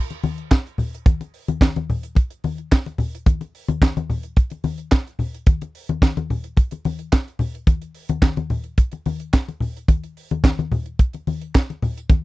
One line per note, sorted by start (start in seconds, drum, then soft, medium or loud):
0.10 closed hi-hat soft
0.10 muted conga soft
0.23 open hi-hat medium
0.23 high conga medium
0.38 closed hi-hat soft
0.51 kick loud
0.51 snare loud
0.51 clap medium
0.51 closed hi-hat medium
0.51 muted conga soft
0.67 closed hi-hat soft
0.78 open hi-hat medium
0.78 low conga medium
0.94 closed hi-hat medium
1.06 kick loud
1.06 closed hi-hat medium
1.06 muted conga soft
1.06 high conga medium
1.21 closed hi-hat soft
1.21 muted conga soft
1.34 open hi-hat medium
1.48 closed hi-hat soft
1.48 high conga medium
1.61 kick loud
1.61 snare loud
1.61 clap medium
1.61 closed hi-hat medium
1.61 muted conga soft
1.61 high conga medium
1.76 closed hi-hat soft
1.76 high conga medium
1.90 open hi-hat soft
1.90 low conga medium
2.03 closed hi-hat soft
2.15 kick medium
2.15 closed hi-hat medium
2.15 muted conga soft
2.30 closed hi-hat soft
2.44 open hi-hat medium
2.44 high conga medium
2.58 closed hi-hat soft
2.72 kick loud
2.72 snare loud
2.72 clap medium
2.72 closed hi-hat medium
2.72 muted conga soft
2.86 closed hi-hat soft
2.86 muted conga soft
2.98 open hi-hat medium
2.98 low conga medium
3.15 closed hi-hat medium
3.26 kick loud
3.26 closed hi-hat medium
3.26 muted conga soft
3.26 high conga medium
3.41 closed hi-hat soft
3.41 muted conga soft
3.55 open hi-hat medium
3.69 closed hi-hat soft
3.69 high conga medium
3.82 kick loud
3.82 snare loud
3.82 clap loud
3.82 closed hi-hat medium
3.82 muted conga soft
3.82 high conga medium
3.97 closed hi-hat soft
3.97 muted conga soft
3.97 high conga medium
4.10 open hi-hat soft
4.10 low conga medium
4.23 closed hi-hat soft
4.37 kick loud
4.37 closed hi-hat medium
4.50 closed hi-hat soft
4.50 muted conga soft
4.64 open hi-hat medium
4.64 high conga medium
4.78 closed hi-hat soft
4.91 kick loud
4.91 snare loud
4.91 clap medium
4.91 closed hi-hat medium
4.91 muted conga soft
5.07 closed hi-hat soft
5.19 open hi-hat medium
5.19 low conga medium
5.34 closed hi-hat medium
5.46 kick loud
5.46 closed hi-hat medium
5.46 muted conga soft
5.46 high conga medium
5.61 closed hi-hat soft
5.61 muted conga soft
5.75 open hi-hat medium
5.89 closed hi-hat soft
5.89 high conga medium
6.02 kick loud
6.02 snare loud
6.02 clap medium
6.02 closed hi-hat medium
6.02 high conga medium
6.17 closed hi-hat soft
6.17 muted conga soft
6.17 high conga medium
6.30 open hi-hat soft
6.30 low conga medium
6.44 closed hi-hat soft
6.57 kick medium
6.57 closed hi-hat medium
6.57 muted conga soft
6.71 closed hi-hat medium
6.71 muted conga soft
6.85 open hi-hat medium
6.85 high conga medium
6.99 closed hi-hat soft
7.12 kick loud
7.12 snare loud
7.12 clap medium
7.12 closed hi-hat medium
7.12 muted conga soft
7.28 closed hi-hat soft
7.39 open hi-hat medium
7.39 low conga medium
7.55 closed hi-hat medium
7.67 kick loud
7.67 closed hi-hat medium
7.67 high conga medium
7.82 closed hi-hat soft
7.95 open hi-hat medium
8.09 closed hi-hat soft
8.09 high conga medium
8.22 kick loud
8.22 snare loud
8.22 clap loud
8.22 closed hi-hat medium
8.22 muted conga soft
8.22 high conga medium
8.37 closed hi-hat soft
8.37 muted conga soft
8.37 high conga medium
8.50 open hi-hat medium
8.50 low conga medium
8.64 closed hi-hat soft
8.78 kick medium
8.78 closed hi-hat medium
8.92 closed hi-hat soft
8.92 muted conga soft
9.06 open hi-hat medium
9.06 high conga medium
9.20 closed hi-hat soft
9.33 kick loud
9.33 snare loud
9.33 clap medium
9.33 closed hi-hat medium
9.33 muted conga soft
9.48 closed hi-hat soft
9.48 muted conga soft
9.60 open hi-hat medium
9.60 low conga medium
9.77 closed hi-hat medium
9.88 kick loud
9.88 closed hi-hat medium
9.88 high conga medium
10.04 closed hi-hat soft
10.17 open hi-hat medium
10.31 closed hi-hat soft
10.31 high conga medium
10.44 kick loud
10.44 snare loud
10.44 clap medium
10.44 closed hi-hat medium
10.44 muted conga soft
10.44 high conga medium
10.59 closed hi-hat soft
10.59 high conga medium
10.72 open hi-hat medium
10.72 low conga medium
10.86 closed hi-hat soft
10.99 kick medium
10.99 closed hi-hat medium
11.13 closed hi-hat soft
11.13 muted conga soft
11.27 open hi-hat medium
11.27 high conga medium
11.41 closed hi-hat soft
11.55 kick loud
11.55 snare loud
11.55 clap medium
11.55 closed hi-hat medium
11.55 muted conga soft
11.70 closed hi-hat soft
11.70 muted conga soft
11.82 open hi-hat medium
11.82 low conga medium
11.97 closed hi-hat medium
12.09 kick loud
12.09 closed hi-hat medium
12.09 muted conga soft
12.09 high conga medium